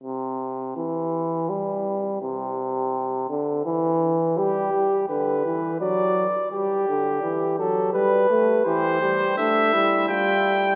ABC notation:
X:1
M:3/4
L:1/8
Q:1/4=84
K:Gmix
V:1 name="Trumpet"
z6 | z6 | z6 | z6 |
c2 e2 g2 |]
V:2 name="Flugelhorn"
z6 | z6 | G2 B2 d2 | G3 A B2 |
G G D E F z |]
V:3 name="Euphonium" clef=bass
C,2 E,2 G,2 | C,3 D, E,2 | G, G, D, E, ^F, z | G, D, E, ^F, G, A, |
E, G, A, G, G,2 |]